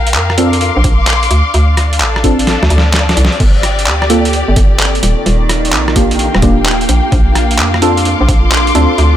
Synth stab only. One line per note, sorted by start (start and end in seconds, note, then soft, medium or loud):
0.38 0.47 C4 medium
0.38 0.47 D4 medium
0.38 0.47 F4 medium
0.38 0.47 A4 medium
2.24 2.33 C4 medium
2.24 2.33 D4 medium
2.24 2.33 F4 medium
2.24 2.33 A4 medium
4.10 4.19 A#3 medium
4.10 4.19 C4 medium
4.10 4.19 F4 medium
4.10 4.19 A4 medium
5.96 6.05 A#3 medium
5.96 6.05 D4 medium
5.96 6.05 F4 medium
5.96 6.05 G4 medium
6.42 6.51 A#3 medium
6.42 6.51 D4 medium
6.42 6.51 F4 medium
6.42 6.51 G4 medium
7.82 7.91 C4 medium
7.82 7.91 D4 medium
7.82 7.91 F4 medium
7.82 7.91 A4 medium
8.75 8.89 C4 medium
8.75 8.89 D4 medium
8.75 8.89 F4 medium
8.75 8.89 A4 medium